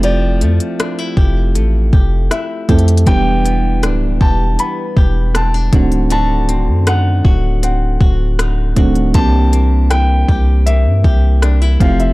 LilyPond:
<<
  \new Staff \with { instrumentName = "Grand piano" } { \time 4/4 \key c \major \tempo 4 = 79 d''4. r4. e''4 | g''4 r8 a''8 b''4 a''4 | a''4 fis''4 fis''4. r8 | a''4 g''4 e''4. f''16 e''16 | }
  \new Staff \with { instrumentName = "Nylon-string guitar" } { \time 4/4 \key c \major <f g'>8 a8 d'16 e'16 g'8 a8 g'8 e'8 g'8 | <e g'>8 b8 d'8 g'8 b8 g'8 c'16 d'16 d8 | <d fis'>8 c'8 ees'8 fis'8 c'8 fis'8 ees'8 fis'8 | <c g'>8 bes8 e'8 g'8 bes8 g'8 d'16 e'16 f8 | }
  \new Staff \with { instrumentName = "Synth keys" } { \time 4/4 \key c \major <f a c' e' g'>4 r2 r8 <f a c' e' a'>8 | <e g b d' g'>4. r2 <ees a c' d' fis'>8~ | <ees a c' d' fis'>4 r2 r8 <ees a c' d' fis'>8 | <e bes c' d' g'>4. r2 <f a c' e' g'>8 | }
  \new Staff \with { instrumentName = "808-style bass" } { \clef bass \time 4/4 \key c \major f,,8 f,16 r8. f,,8 a,,8 f,,8 r8 f,8 | e,,4 d,,8 e,,8 r8 e,,4 d,,8~ | d,,8. fis,8. d,,4 d,,4 d,,8 | c,4. c,8. g,16 c,4 f,,8 | }
  \new DrumStaff \with { instrumentName = "Drums" } \drummode { \time 4/4 hh8 hh16 hh16 <hh ss>8 bd8 hh8 bd8 <hh ss>8 <hh bd>32 hh32 hh32 hh32 | <hh bd>8 hh8 <hh ss>8 bd8 hh8 bd8 <hh ss>8 <hh bd>16 hh16 | hh8 hh8 <hh ss>8 bd8 hh8 bd8 <hh ss>8 <hh bd>16 hh16 | <hh bd>8 hh8 <hh ss>8 bd8 hh8 bd8 <hh ss>8 <hh bd>16 hh16 | }
>>